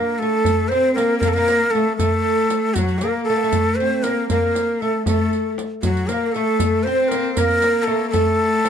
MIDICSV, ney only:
0, 0, Header, 1, 2, 480
1, 0, Start_track
1, 0, Tempo, 512821
1, 423, Time_signature, 6, 3, 24, 8
1, 8136, End_track
2, 0, Start_track
2, 0, Title_t, "Ney"
2, 0, Program_c, 0, 77
2, 0, Note_on_c, 0, 70, 83
2, 176, Note_on_c, 0, 69, 98
2, 190, Note_off_c, 0, 70, 0
2, 640, Note_on_c, 0, 72, 99
2, 654, Note_off_c, 0, 69, 0
2, 876, Note_off_c, 0, 72, 0
2, 881, Note_on_c, 0, 70, 91
2, 1105, Note_off_c, 0, 70, 0
2, 1110, Note_on_c, 0, 70, 94
2, 1197, Note_on_c, 0, 69, 79
2, 1211, Note_off_c, 0, 70, 0
2, 1251, Note_on_c, 0, 70, 97
2, 1265, Note_off_c, 0, 69, 0
2, 1597, Note_on_c, 0, 69, 92
2, 1612, Note_off_c, 0, 70, 0
2, 1837, Note_off_c, 0, 69, 0
2, 1842, Note_on_c, 0, 69, 103
2, 2563, Note_on_c, 0, 66, 89
2, 2577, Note_off_c, 0, 69, 0
2, 2795, Note_on_c, 0, 70, 88
2, 2809, Note_off_c, 0, 66, 0
2, 3026, Note_off_c, 0, 70, 0
2, 3032, Note_on_c, 0, 69, 97
2, 3513, Note_on_c, 0, 72, 94
2, 3527, Note_off_c, 0, 69, 0
2, 3775, Note_on_c, 0, 70, 86
2, 3789, Note_off_c, 0, 72, 0
2, 4013, Note_off_c, 0, 70, 0
2, 4019, Note_on_c, 0, 70, 93
2, 4494, Note_on_c, 0, 69, 91
2, 4508, Note_off_c, 0, 70, 0
2, 4737, Note_off_c, 0, 69, 0
2, 4746, Note_on_c, 0, 69, 78
2, 5178, Note_off_c, 0, 69, 0
2, 5456, Note_on_c, 0, 66, 85
2, 5687, Note_on_c, 0, 70, 83
2, 5701, Note_off_c, 0, 66, 0
2, 5864, Note_off_c, 0, 70, 0
2, 5864, Note_on_c, 0, 70, 71
2, 5917, Note_on_c, 0, 69, 100
2, 5931, Note_off_c, 0, 70, 0
2, 6395, Note_on_c, 0, 72, 97
2, 6409, Note_off_c, 0, 69, 0
2, 6630, Note_on_c, 0, 70, 90
2, 6644, Note_off_c, 0, 72, 0
2, 6866, Note_off_c, 0, 70, 0
2, 6872, Note_on_c, 0, 70, 98
2, 7330, Note_on_c, 0, 69, 89
2, 7344, Note_off_c, 0, 70, 0
2, 7575, Note_off_c, 0, 69, 0
2, 7581, Note_on_c, 0, 69, 100
2, 8136, Note_off_c, 0, 69, 0
2, 8136, End_track
0, 0, End_of_file